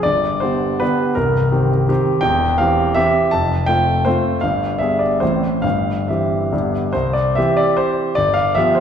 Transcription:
0.03 G1 G2 D5
0.40 D3 B3 G4 C5
0.80 D3 B3 G4 B4
1.15 C1 C2 A#4
1.51 D#3 C4 G4
1.89 D#3 C4 G4
2.21 E1 E2 G5
2.58 E3 C4 G4 F5
2.94 E3 C4 G4 E5
3.31 F1 F2 A5
3.66 A3 C4 F4 G5
4.05 A3 C4 F4 C5
4.41 G1 G2 F5
4.79 G3 B3 G#4 E5
4.99 D5
5.20 A1 A2 E3 C4 E4 C5
5.62 G1 G2 F5
6.08 E3 C4 G4 E5
6.52 G1 G2 D3 B3 G4
6.93 C2 C5
7.13 D5
7.35 E3 C4 G4 E5
7.57 D5
7.77 C5
8.15 G1 D5
8.34 F5
8.55 F3 B3 G4 E5
8.75 C5

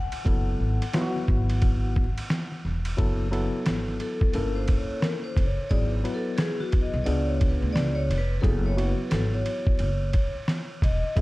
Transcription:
Already playing: F#5
0.12 ride
0.24 F#1 F#3 B3 E4 A4, kick, ride
0.60 G#1
0.82 ride
0.93 F#3 B3 E4 F4, snare, hi-hat pedal, ride
1.01 F#4
1.16 snare
1.28 G#1, kick
1.50 ride
1.62 kick, ride
1.96 kick
2.18 ride
2.30 snare, hi-hat pedal, ride
2.52 snare
2.65 E1, snare
2.85 ride
2.97 F#1 F#3 B3 E4 A4, kick, ride
3.31 F#3 B3 E4 A4, ride
3.66 G#1, snare, hi-hat pedal, ride
3.88 snare
4.00 A4, ride
4.21 kick
4.33 G1 A#3 C#4 E4 A4 A#4, ride
4.55 C5
4.68 kick, ride
4.77 C#5
5.01 A#4, snare, hi-hat pedal, ride
5.24 C5
5.37 F#1, kick, snare, ride
5.45 C#5
5.69 G#1 F#3 B3 E4 G#4 D5, kick, ride
5.89 B4
6.04 F#3 B3 E4 B4, ride
6.14 A4
6.37 G#4, snare, hi-hat pedal, ride
6.60 F#4, snare
6.72 kick, ride
6.82 D#5
6.94 B1
7.04 C#2 B3 D4 F4 G#4 D5, ride
7.26 C#5
7.41 kick, ride
7.49 B4
7.62 D2
7.72 C#2 D5, snare
7.77 hi-hat pedal, ride
7.95 C#5
8.09 F1, snare, ride
8.18 B4
8.41 F#1 F#3 B3 E4 G#4 A4, kick, ride
8.66 C#5
8.76 F#3 B3 E4 F#4, ride
8.88 B4
9.10 G#1 A4, snare, hi-hat pedal, ride
9.33 C#5, snare
9.46 ride
9.67 kick
9.79 F#1, ride
10.13 kick, ride
10.48 snare, hi-hat pedal, ride
10.82 E1 D#5, kick, snare, ride
11.16 F#1 F#3 B3 E4 G#4 E5, kick, ride

